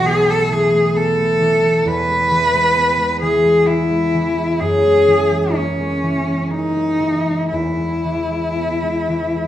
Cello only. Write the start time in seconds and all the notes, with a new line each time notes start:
0.06 G#4
0.30 A4
0.52 G#4
0.96 A4
1.87 B4
3.21 G#4
3.67 E4
4.60 G#4
5.54 C#4
6.50 D#4
7.51 E4